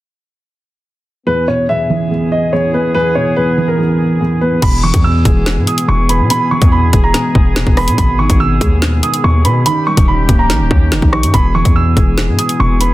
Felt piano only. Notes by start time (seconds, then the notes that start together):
1.27 E2
1.48 B2
1.69 E2
1.90 E3
2.11 E2
2.53 E2
2.73 B3
2.94 E2
3.16 B2
3.37 E2
3.57 E3
3.78 E2
4.20 E2
4.42 B3
4.62 B2
4.83 E3
5.04 B2
5.25 G#3
5.46 B2
5.88 B2
6.09 B4
6.30 B2
6.51 E3
6.72 B2
6.93 G#3
7.14 B2
7.56 B2
7.77 B4
7.98 B2
8.19 D#3
8.40 B2
8.61 G#3
8.82 B2
9.24 B2
9.45 B4
9.66 D#3
9.87 G3
10.08 D#3
10.29 A#3
10.50 D#3
10.92 D#3
11.13 D#4
11.34 B2
11.55 E3
11.76 B2
11.97 G#3
12.18 B2
12.60 B2
12.81 B4